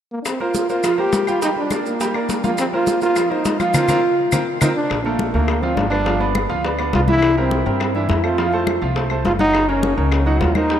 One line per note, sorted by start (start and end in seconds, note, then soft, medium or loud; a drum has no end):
0.12 0.22 A#3 medium
0.22 0.28 D4 medium
0.22 high bongo medium
0.22 high conga soft
0.22 claves medium
0.22 maracas medium
0.27 0.41 C4 medium
0.40 0.64 A#3 medium
0.40 0.68 F4 medium
0.40 0.64 A#4 medium
0.40 0.64 C5 medium
0.40 high conga soft
0.54 high bongo medium
0.54 high conga medium
0.54 maracas medium
0.69 0.81 A#3 medium
0.69 0.97 F4 medium
0.69 0.81 A#4 medium
0.69 0.81 C5 medium
0.69 high conga soft
0.69 maracas soft
0.83 0.95 F3 medium
0.83 0.96 F4 medium
0.83 0.96 F5 medium
0.83 high bongo medium
0.83 high conga soft
0.83 claves medium
0.83 maracas medium
0.98 1.22 A#3 medium
0.98 1.30 G4 loud
0.98 1.22 A#4 medium
0.98 1.22 C5 medium
0.98 high conga soft
1.13 high bongo medium
1.13 low bongo medium
1.13 high conga medium
1.13 maracas medium
1.27 1.39 G3 medium
1.27 1.43 F4 medium
1.27 1.39 G4 medium
1.27 1.39 G5 medium
1.27 claves medium
1.27 maracas soft
1.42 1.66 G3 medium
1.42 1.49 D#4 loud
1.42 1.66 G4 medium
1.42 1.66 G5 medium
1.42 high bongo medium
1.42 high conga soft
1.42 maracas medium
1.56 1.85 D4 medium
1.56 high bongo soft
1.56 high conga soft
1.71 1.95 A#3 medium
1.71 1.95 A#4 medium
1.71 1.95 D5 medium
1.71 high bongo medium
1.71 high conga medium
1.71 claves medium
1.71 maracas medium
1.86 2.41 A#3 medium
1.86 maracas soft
2.00 2.12 G3 medium
2.00 2.12 G4 medium
2.00 2.12 G5 medium
2.00 high bongo medium
2.00 high conga soft
2.00 maracas medium
2.14 2.39 A#3 medium
2.14 2.39 A#4 medium
2.14 2.39 D5 medium
2.14 high bongo soft
2.14 high conga soft
2.14 claves medium
2.29 high bongo medium
2.29 low bongo medium
2.29 high conga medium
2.29 maracas medium
2.44 2.67 F3 medium
2.44 2.51 A#3 medium
2.44 2.68 F4 medium
2.44 2.68 F5 medium
2.44 high bongo soft
2.44 high conga medium
2.44 maracas soft
2.58 2.66 C4 loud
2.58 high bongo medium
2.58 high conga soft
2.58 claves medium
2.58 maracas medium
2.73 2.97 A#3 medium
2.73 3.00 F4 medium
2.73 2.97 A#4 medium
2.73 2.97 C5 medium
2.73 high conga soft
2.87 high bongo medium
2.87 high conga medium
2.87 maracas medium
3.01 3.14 A#3 medium
3.01 3.33 F4 medium
3.01 3.14 A#4 medium
3.01 3.14 C5 medium
3.01 high conga soft
3.01 maracas soft
3.16 3.28 F3 medium
3.16 3.28 F4 medium
3.16 3.28 F5 medium
3.16 high bongo medium
3.16 high conga soft
3.16 claves medium
3.16 maracas medium
3.30 3.54 A#3 medium
3.30 3.60 D#4 medium
3.30 3.54 A#4 medium
3.30 3.55 C5 medium
3.30 high conga soft
3.45 high bongo medium
3.45 low bongo medium
3.45 high conga medium
3.45 maracas medium
3.60 3.72 F3 medium
3.60 3.72 F4 medium
3.60 4.58 F4 loud
3.60 3.72 F5 medium
3.60 high conga medium
3.60 claves medium
3.60 maracas soft
3.74 3.83 C4 medium
3.74 3.84 F4 medium
3.74 3.83 A#4 medium
3.74 low bongo loud
3.74 low conga medium
3.74 claves loud
3.74 maracas medium
3.88 3.98 C4 loud
3.88 3.98 F4 loud
3.88 3.98 A#4 loud
3.88 low bongo medium
3.88 low conga medium
3.88 claves medium
3.88 maracas medium
4.32 4.42 C4 medium
4.32 4.42 F4 medium
4.32 4.42 A#4 medium
4.32 low bongo medium
4.32 low conga loud
4.32 claves loud
4.32 maracas medium
4.61 4.71 C4 medium
4.61 4.68 D#4 medium
4.61 4.71 F4 medium
4.61 4.71 A#4 loud
4.61 low bongo medium
4.61 low conga medium
4.61 claves medium
4.61 maracas loud
4.75 5.06 D4 loud
4.90 5.31 A#1 medium
4.90 high bongo medium
4.90 high conga soft
4.90 claves medium
5.04 5.29 A3 medium
5.04 5.32 A#3 medium
5.04 5.29 A4 medium
5.04 5.29 A#4 medium
5.04 high conga soft
5.19 high bongo medium
5.19 high conga medium
5.33 5.74 D2 medium
5.33 5.58 A3 medium
5.33 5.63 A#3 medium
5.33 5.58 A4 medium
5.33 5.58 A#4 medium
5.33 high conga soft
5.48 high bongo medium
5.48 high conga soft
5.48 claves medium
5.61 5.87 F3 medium
5.61 5.77 C4 medium
5.61 5.87 F4 medium
5.61 5.87 F5 medium
5.61 high conga soft
5.76 6.44 G1 medium
5.76 5.89 D4 medium
5.76 high bongo medium
5.76 low bongo medium
5.76 high conga medium
5.90 6.03 B3 medium
5.90 6.45 D4 loud
5.90 6.04 B4 medium
5.90 6.04 D5 medium
5.90 claves medium
6.06 6.18 F3 medium
6.06 6.18 F4 medium
6.06 6.19 F5 medium
6.06 high bongo medium
6.06 high conga soft
6.20 6.44 B3 medium
6.20 6.44 B4 medium
6.20 6.44 D5 medium
6.20 high bongo soft
6.20 high conga soft
6.35 high bongo medium
6.35 high conga medium
6.35 claves medium
6.49 6.90 D2 medium
6.49 6.61 F3 medium
6.49 6.62 F4 medium
6.49 6.62 F5 medium
6.64 6.76 B3 medium
6.64 6.76 B4 medium
6.64 6.77 D5 medium
6.64 high bongo medium
6.64 high conga soft
6.79 7.03 B3 medium
6.79 7.03 B4 medium
6.79 7.03 D5 medium
6.79 high bongo soft
6.79 high conga soft
6.79 claves medium
6.93 7.60 C2 medium
6.93 7.01 F4 medium
6.93 high bongo medium
6.93 low bongo medium
6.93 high conga medium
7.08 7.32 E3 medium
7.08 7.32 E4 medium
7.08 7.36 E4 loud
7.08 7.32 E5 medium
7.08 high bongo soft
7.08 high conga medium
7.22 high bongo medium
7.22 high conga soft
7.22 claves medium
7.37 7.61 G3 medium
7.37 7.64 C4 loud
7.37 7.61 G4 medium
7.37 7.61 A#4 medium
7.37 high conga soft
7.51 high bongo medium
7.51 high conga medium
7.66 8.06 G2 medium
7.66 7.90 G3 medium
7.66 7.93 C4 medium
7.66 7.90 G4 medium
7.66 7.90 A#4 medium
7.66 high conga soft
7.80 high bongo medium
7.80 high conga soft
7.80 claves medium
7.95 8.19 E3 medium
7.95 8.10 D4 medium
7.95 8.19 E4 medium
7.95 8.19 E5 medium
7.95 high conga soft
8.09 8.76 F2 medium
8.09 8.25 E4 medium
8.09 high bongo medium
8.09 low bongo medium
8.09 high conga medium
8.23 8.36 A3 medium
8.23 8.81 F4 loud
8.23 8.36 A4 medium
8.23 8.36 C5 medium
8.23 claves medium
8.38 8.50 F3 medium
8.38 8.50 F4 medium
8.38 8.51 F5 medium
8.38 high bongo medium
8.38 high conga soft
8.52 8.77 A3 medium
8.52 8.77 A4 medium
8.52 8.77 C5 medium
8.52 high bongo soft
8.52 high conga soft
8.67 high bongo medium
8.67 high conga medium
8.67 claves medium
8.82 9.22 C2 medium
8.82 8.94 F3 medium
8.82 8.94 F4 medium
8.82 8.94 F5 medium
8.96 9.08 A3 medium
8.96 9.08 A4 medium
8.96 9.08 C5 medium
8.96 high bongo medium
8.96 high conga soft
9.10 9.35 A3 medium
9.10 9.35 A4 medium
9.10 9.35 C5 medium
9.10 high bongo soft
9.10 high conga soft
9.10 claves medium
9.25 9.92 F#1 medium
9.25 9.33 F4 loud
9.25 high bongo medium
9.25 low bongo medium
9.25 high conga medium
9.39 9.63 F#3 medium
9.39 9.70 D#4 loud
9.39 9.63 F#4 medium
9.39 9.63 F#5 medium
9.39 high bongo soft
9.39 high conga medium
9.54 high bongo medium
9.54 high conga soft
9.54 claves medium
9.68 9.92 A#3 medium
9.68 9.97 C#4 loud
9.68 9.92 A#4 medium
9.68 9.93 C#5 medium
9.68 high conga soft
9.83 high bongo medium
9.83 high conga medium
9.97 10.38 C#2 medium
9.97 10.21 A#3 medium
9.97 10.24 C#4 medium
9.97 10.21 A#4 medium
9.97 10.21 C#5 medium
9.97 high conga soft
10.11 high bongo medium
10.11 high conga soft
10.11 claves medium
10.26 10.50 F#3 medium
10.26 10.43 D#4 loud
10.26 10.50 F#4 medium
10.26 10.50 F#5 medium
10.26 high conga soft
10.41 10.80 D#2 medium
10.41 10.57 F4 loud
10.41 high bongo medium
10.41 low bongo medium
10.41 high conga medium
10.55 10.67 A#3 medium
10.55 10.80 D#4 loud
10.55 10.68 A#4 medium
10.55 10.68 C5 medium
10.55 high conga medium
10.55 claves medium
10.69 10.80 G3 medium
10.69 10.80 G4 medium
10.69 10.80 G5 medium
10.69 high bongo medium
10.69 high conga soft